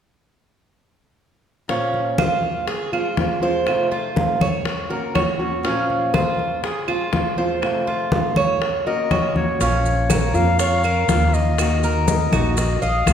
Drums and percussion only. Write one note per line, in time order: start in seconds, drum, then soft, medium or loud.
1.69 high bongo medium
1.69 high conga soft
1.94 high conga soft
2.18 high bongo medium
2.18 high conga medium
2.18 claves medium
2.43 high conga soft
2.68 high bongo medium
2.68 high conga soft
2.93 high conga soft
2.93 claves medium
3.17 high bongo medium
3.17 low bongo medium
3.17 high conga medium
3.67 high bongo medium
3.67 high conga soft
3.67 claves medium
3.92 high bongo soft
3.92 high conga soft
4.16 high bongo medium
4.16 high conga medium
4.41 high bongo soft
4.41 high conga medium
4.41 claves medium
4.65 high bongo medium
4.65 high conga soft
4.90 high bongo soft
4.90 high conga soft
5.15 high bongo medium
5.15 low bongo medium
5.15 high conga medium
5.15 claves medium
5.65 high bongo medium
5.65 high conga soft
5.90 high conga soft
6.14 high bongo medium
6.14 high conga medium
6.14 claves medium
6.39 high conga soft
6.63 high bongo medium
6.63 high conga soft
6.88 high conga soft
6.88 claves medium
7.13 high bongo medium
7.13 low bongo medium
7.13 high conga medium
7.62 high bongo medium
7.62 high conga soft
7.62 claves medium
7.88 high bongo soft
7.88 high conga soft
8.12 high bongo medium
8.12 high conga medium
8.36 high bongo soft
8.36 high conga medium
8.36 claves medium
8.61 high bongo medium
8.61 high conga soft
8.87 high bongo soft
8.87 high conga soft
9.11 high bongo medium
9.11 low bongo medium
9.11 high conga medium
9.11 claves medium
9.36 high conga medium
9.61 high bongo medium
9.61 high conga soft
9.61 maracas medium
9.86 high conga soft
9.86 maracas soft
10.10 high bongo medium
10.10 high conga medium
10.10 claves medium
10.10 maracas medium
10.34 high conga soft
10.34 maracas soft
10.59 high bongo medium
10.59 high conga soft
10.59 maracas medium
10.84 high conga soft
10.84 claves medium
10.84 maracas soft
11.09 high bongo medium
11.09 low bongo medium
11.09 high conga medium
11.09 maracas medium
11.34 maracas soft
11.58 high bongo medium
11.58 high conga soft
11.58 claves medium
11.58 maracas medium
11.83 high bongo soft
11.83 high conga soft
11.83 maracas soft
12.08 high bongo medium
12.08 high conga medium
12.08 maracas medium
12.33 high bongo soft
12.33 high conga medium
12.33 claves medium
12.33 maracas soft
12.57 high bongo medium
12.57 high conga soft
12.57 maracas medium
12.82 high bongo soft
12.82 high conga soft
12.82 maracas soft
13.07 high bongo medium
13.07 low bongo medium
13.07 high conga medium
13.07 claves medium
13.07 maracas medium